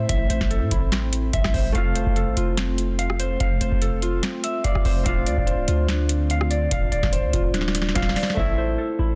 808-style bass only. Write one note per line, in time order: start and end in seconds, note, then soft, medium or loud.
0.09 0.29 A1 loud
0.30 0.40 A1 loud
0.41 0.63 A1 loud
0.62 0.71 A2 loud
0.71 1.31 A1 loud
1.33 1.44 A1 loud
1.44 1.54 A1 loud
1.54 1.74 A1 loud
1.75 2.05 F1 loud
2.06 2.29 F1 loud
2.27 2.36 A1 loud
2.37 3.36 F1 loud
3.40 3.60 F1 loud
3.61 3.71 F1 loud
3.72 4.21 F1 loud
4.64 4.75 F1 loud
4.75 4.85 F1 loud
4.85 5.05 F1 loud
5.06 5.28 D1 loud
5.27 5.37 D2 loud
5.37 5.60 D1 loud
5.58 5.67 C1 loud
5.68 6.67 D2 loud
6.71 6.91 D1 loud
6.92 7.02 D1 loud
7.03 7.25 D1 loud
7.24 7.33 D2 loud
7.33 7.93 D1 loud
7.95 8.15 D1 loud
8.37 8.77 A1 loud
8.99 9.15 A1 loud